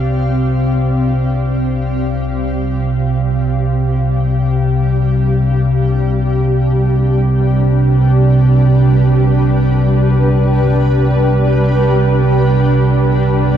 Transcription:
0.00 13.57 C2 medium
0.00 13.57 C3 medium
0.00 3.23 C4 medium
0.00 13.57 G4 medium
0.00 4.81 D5 medium
0.00 5.54 F5 medium
3.22 13.57 G3 medium
4.26 13.57 D4 medium
6.62 13.57 B4 medium

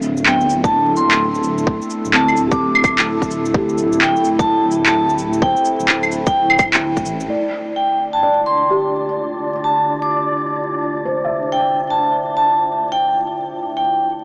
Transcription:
0.00 1.80 D1 loud
0.00 13.86 A3 medium
0.00 0.16 C4 medium
0.00 0.48 D4 medium
0.00 0.80 E5 medium
0.00 cabasa medium
0.12 13.86 E4 medium
0.17 8.37 A4 medium
0.17 shaker medium
0.26 1.08 B3 soft
0.26 0.51 G5 medium
0.26 clap loud
0.41 shaker soft
0.46 1.21 D4 medium
0.50 cabasa medium
0.60 1.37 E4 medium
0.64 0.89 A5 medium
0.64 kick loud
0.64 shaker medium
0.97 1.22 C6 medium
0.97 cabasa medium
1.11 clap loud
1.11 shaker medium
1.35 shaker soft
1.44 cabasa medium
1.58 shaker medium
1.67 kick loud
1.82 shaker soft
1.90 cabasa medium
2.05 3.53 D1 loud
2.05 shaker medium
2.13 2.96 C4 medium
2.13 2.39 A5 medium
2.13 clap loud
2.28 claves soft
2.28 shaker soft
2.33 3.08 E4 medium
2.37 cabasa medium
2.47 3.24 G4 medium
2.51 2.99 D6 medium
2.51 kick loud
2.51 shaker medium
2.75 claves medium
2.84 kick loud
2.84 cabasa medium
2.84 claves medium
2.99 clap loud
2.99 shaker medium
3.22 kick medium
3.22 shaker soft
3.31 cabasa medium
3.45 shaker medium
3.54 5.55 D1 loud
3.54 4.37 G4 medium
3.54 kick loud
3.69 shaker soft
3.78 cabasa medium
3.92 shaker medium
4.01 4.26 G5 medium
4.01 clap loud
4.16 shaker soft
4.25 cabasa medium
4.39 4.64 A5 medium
4.39 kick loud
4.39 shaker medium
4.72 cabasa medium
4.86 5.11 A5 medium
4.86 clap loud
4.86 shaker medium
5.09 shaker soft
5.18 cabasa medium
5.33 shaker medium
5.42 6.24 C5 medium
5.42 5.67 G5 medium
5.42 kick loud
5.56 shaker soft
5.65 cabasa medium
5.80 7.05 D1 loud
5.80 shaker medium
5.88 clap loud
6.03 claves soft
6.03 shaker soft
6.12 cabasa medium
6.26 6.59 G5 medium
6.26 kick loud
6.26 shaker medium
6.50 claves medium
6.59 kick loud
6.59 cabasa medium
6.59 claves medium
6.74 clap loud
6.74 shaker medium
6.97 kick medium
6.97 shaker soft
7.06 7.28 A1 medium
7.06 cabasa medium
7.20 shaker medium
7.30 13.86 D3 medium
7.30 13.86 D4 medium
7.30 8.12 D5 soft
7.30 13.86 D5 medium
7.76 8.01 G5 medium
8.13 8.38 A5 medium
8.23 9.05 D5 medium
8.29 13.86 F4 medium
8.46 8.71 C6 medium
8.70 9.52 G4 medium
9.64 9.89 A5 medium
10.02 10.49 D6 medium
11.05 11.87 C5 medium
11.24 11.99 E5 soft
11.52 11.77 G5 medium
11.90 12.14 A5 medium
12.37 12.61 A5 medium
12.92 13.17 G5 medium
13.77 14.09 G5 medium

